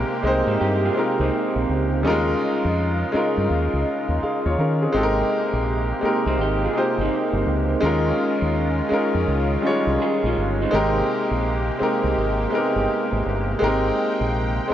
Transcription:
0.00 2.01 C3 medium
0.00 0.14 G#3 loud
0.00 2.01 A#3 medium
0.00 0.18 C4 loud
0.00 0.15 D#4 medium
0.00 0.16 G4 loud
0.00 2.01 G4 medium
0.00 0.16 A#4 loud
0.23 0.41 C2 medium
0.23 0.90 G#3 medium
0.23 0.90 C4 medium
0.23 0.91 D#4 medium
0.23 0.91 G4 medium
0.27 0.92 C5 loud
0.47 0.57 G#2 medium
0.47 0.60 C4 medium
0.47 0.59 D#4 medium
0.61 0.89 G2 medium
0.61 0.83 D#4 medium
0.61 0.82 G4 medium
0.85 0.96 F4 medium
0.85 0.96 G#4 medium
0.94 1.95 G#3 medium
0.94 1.95 C4 medium
0.94 1.96 D#4 medium
0.94 1.19 F4 medium
0.94 1.96 G4 medium
0.99 1.97 A#4 medium
1.20 1.29 C2 medium
1.20 2.01 C4 medium
1.20 2.01 D#4 medium
1.56 1.66 A#1 medium
1.69 2.05 C#2 medium
2.03 2.33 D#2 loud
2.03 4.90 C#3 medium
2.03 2.12 G3 medium
2.03 3.04 C#4 medium
2.03 4.90 D#4 medium
2.03 3.04 D#4 medium
2.03 4.91 F4 medium
2.03 3.05 F4 loud
2.08 3.07 G#3 loud
2.08 3.06 A#4 loud
2.65 3.03 F2 medium
3.12 3.79 G#3 medium
3.12 3.79 C#4 medium
3.12 3.80 D#4 medium
3.12 3.80 F4 medium
3.12 muted fingered electric bass stroke soft
3.16 3.81 A#4 medium
3.38 3.47 G2 medium
3.50 3.68 D#2 loud
3.73 3.83 C#2 medium
4.09 4.18 D#2 medium
4.23 4.44 G#4 medium
4.23 4.44 F5 medium
4.23 muted fingered electric bass stroke medium
4.46 4.55 D#2 medium
4.46 4.58 F4 medium
4.46 4.57 C#5 medium
4.58 4.86 D#3 loud
4.58 4.80 C#4 medium
4.58 4.80 A#4 medium
4.82 4.92 C4 medium
4.82 5.16 G#4 medium
4.92 5.22 G#1 loud
4.92 7.80 C3 medium
4.92 5.93 G#3 loud
4.92 14.74 G#3 medium
4.92 7.80 A#3 medium
4.92 5.93 C4 loud
4.92 5.93 D#4 medium
4.92 7.80 G4 medium
4.92 5.94 G4 medium
4.97 5.03 A4 loud
5.03 5.98 A#4 loud
5.53 5.91 A#1 medium
6.01 6.68 G#3 medium
6.01 6.10 A#3 medium
6.01 6.69 D#4 medium
6.01 6.70 G4 medium
6.01 muted fingered electric bass stroke soft
6.05 6.72 C4 medium
6.05 6.70 A#4 medium
6.26 6.36 C2 medium
6.26 6.39 C4 medium
6.26 6.38 D#4 medium
6.38 6.66 G#1 medium
6.38 6.62 D#4 medium
6.38 6.62 G4 medium
6.64 6.75 F4 medium
6.64 6.75 G#4 medium
6.73 7.73 G#3 medium
6.73 7.74 C4 medium
6.73 7.74 D#4 medium
6.73 7.75 G4 medium
6.77 6.98 F4 medium
6.77 7.76 C5 medium
6.98 7.08 G1 medium
6.98 7.81 C4 medium
6.98 7.80 D#4 medium
7.33 7.43 G1 medium
7.46 7.74 C#2 loud
7.80 8.11 D#2 loud
7.80 10.68 D#3 medium
7.80 8.81 G#3 loud
7.80 10.68 C#4 medium
7.80 8.82 C#4 medium
7.80 8.82 D#4 loud
7.80 10.68 F4 medium
7.80 8.83 F4 medium
7.85 8.83 A#4 loud
8.42 8.80 D#2 loud
8.89 9.56 G#3 medium
8.89 9.57 C#4 medium
8.89 9.58 D#4 medium
8.89 9.58 F4 medium
8.89 muted fingered electric bass stroke soft
8.94 9.59 A#4 loud
9.14 9.24 F2 medium
9.28 9.56 C#2 medium
9.62 9.71 G3 medium
9.62 10.63 C#4 medium
9.62 10.63 D#4 medium
9.62 10.64 F4 medium
9.67 10.66 G#3 medium
9.67 10.65 C#5 loud
9.87 9.97 C2 medium
10.02 10.23 F4 medium
10.02 10.23 G#4 medium
10.24 10.33 A#1 medium
10.24 10.59 C#4 medium
10.24 10.58 F4 medium
10.37 10.64 G1 medium
10.62 10.95 C4 medium
10.62 10.95 D#4 medium
10.71 11.01 G#1 loud
10.71 14.74 C3 medium
10.71 11.71 G#3 loud
10.71 10.80 A#3 medium
10.71 14.74 A#3 medium
10.71 11.72 D#4 loud
10.71 13.58 G4 medium
10.71 11.72 G4 loud
10.75 11.75 C4 loud
10.75 11.73 A#4 loud
11.31 11.69 A#1 medium
11.79 12.46 G#3 medium
11.79 12.46 C4 medium
11.79 12.47 D#4 medium
11.79 12.47 G4 medium
11.79 muted fingered electric bass stroke soft
11.83 12.48 A#4 loud
12.04 12.14 C2 medium
12.18 12.45 G#1 medium
12.50 13.51 G#3 medium
12.50 12.60 B3 medium
12.50 13.52 D#4 medium
12.50 13.53 G4 medium
12.55 13.55 C4 medium
12.55 13.53 A#4 loud
12.76 12.86 G1 medium
13.12 13.22 G#1 medium
13.26 13.54 G1 medium
13.59 13.90 G#1 loud
13.59 14.60 G#3 loud
13.59 13.69 A#3 medium
13.59 14.61 D#4 medium
13.59 14.61 G4 medium
13.59 14.74 G5 medium
13.64 14.63 C4 loud
13.64 14.62 A#4 loud
14.21 14.59 A#1 medium
14.68 14.74 G#3 medium
14.68 14.74 C4 medium
14.68 14.74 D#4 medium
14.68 muted fingered electric bass stroke soft

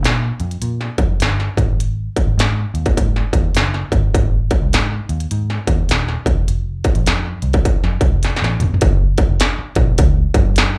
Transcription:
0.04 0.31 A#2 loud
0.04 snare loud
0.04 closed hi-hat medium
0.40 0.57 F2 medium
0.40 closed hi-hat medium
0.51 closed hi-hat medium
0.62 0.89 A#2 medium
0.62 closed hi-hat medium
0.81 snare soft
0.98 1.15 F2 medium
0.98 kick medium
0.98 closed hi-hat medium
1.20 1.47 G1 medium
1.20 snare loud
1.20 closed hi-hat medium
1.40 snare soft
1.57 2.08 G#1 medium
1.57 kick medium
1.57 closed hi-hat medium
1.80 closed hi-hat medium
2.16 kick medium
2.16 closed hi-hat medium
2.27 2.35 G#1 medium
2.38 2.64 G#2 loud
2.38 snare loud
2.38 closed hi-hat medium
2.74 2.91 D#2 medium
2.74 closed hi-hat medium
2.86 kick medium
2.86 closed hi-hat medium
2.97 3.24 G#2 medium
2.97 kick medium
2.97 closed hi-hat medium
3.16 snare soft
3.33 3.49 D#2 medium
3.33 kick medium
3.33 closed hi-hat medium
3.55 3.82 F#1 medium
3.55 snare loud
3.55 closed hi-hat medium
3.74 snare soft
3.92 4.08 G1 medium
3.92 kick medium
3.92 closed hi-hat medium
4.14 4.49 G#1 medium
4.14 kick loud
4.14 closed hi-hat medium
4.51 kick medium
4.51 closed hi-hat medium
4.62 4.75 C2 medium
4.73 5.00 G#2 loud
4.73 snare loud
4.73 closed hi-hat medium
5.09 5.25 D#2 medium
5.09 closed hi-hat medium
5.20 closed hi-hat medium
5.31 5.58 G#2 loud
5.31 closed hi-hat medium
5.50 snare soft
5.67 5.84 D#2 medium
5.67 kick medium
5.67 closed hi-hat medium
5.89 6.16 D#1 medium
5.89 snare loud
5.89 closed hi-hat medium
6.08 snare soft
6.26 6.42 E1 medium
6.26 kick medium
6.26 closed hi-hat medium
6.48 6.83 F1 medium
6.48 closed hi-hat medium
6.84 kick medium
6.84 closed hi-hat medium
6.95 7.04 A1 medium
6.95 closed hi-hat soft
7.06 7.33 F2 loud
7.06 snare loud
7.06 closed hi-hat medium
7.42 7.59 C2 medium
7.42 closed hi-hat medium
7.53 kick medium
7.53 closed hi-hat medium
7.65 kick medium
7.65 closed hi-hat medium
7.84 7.97 F2 medium
7.84 snare soft
8.01 8.09 C2 medium
8.01 kick medium
8.01 closed hi-hat medium
8.13 8.34 F1 medium
8.23 snare medium
8.23 closed hi-hat medium
8.36 snare medium
8.42 8.55 A1 medium
8.42 snare medium
8.60 8.76 F1 medium
8.60 closed hi-hat medium
8.60 floor tom medium
8.60 mid tom medium
8.74 floor tom medium
8.81 9.16 F#1 loud
8.81 kick loud
8.81 closed hi-hat medium
9.18 kick medium
9.18 closed hi-hat medium
9.29 9.37 F1 medium
9.40 snare loud
9.40 closed hi-hat medium
9.59 muted picked electric bass stroke soft
9.75 9.92 A#1 loud
9.75 kick medium
9.75 closed hi-hat medium
9.98 10.25 C#2 loud
9.98 kick medium
9.98 closed hi-hat loud
10.34 10.77 F#2 medium
10.34 kick loud
10.34 closed hi-hat medium
10.56 snare loud
10.56 closed hi-hat loud

